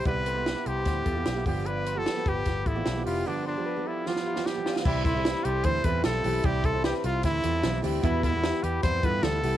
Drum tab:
CC |----------------|----------------|----------------|x---------------|
HH |x-x-x-x-x-x-x-o-|x-x-x-x-x-x-x-o-|----------------|--x-x-x-x-x-x-o-|
SD |----o---o---o---|----o---o---o---|--------oo-oo-oo|----o-------o---|
BD |o-------o-o---o-|------o-o-o-----|----------------|o-o-----o-o-----|

CC |----------------|----------------|
HH |x-x-x-x-x-x-x-o-|x-x-x-x-x-x-x-o-|
SD |----o---o---o---|----o-------o---|
BD |o-o-----o-------|o-o-----o-o-----|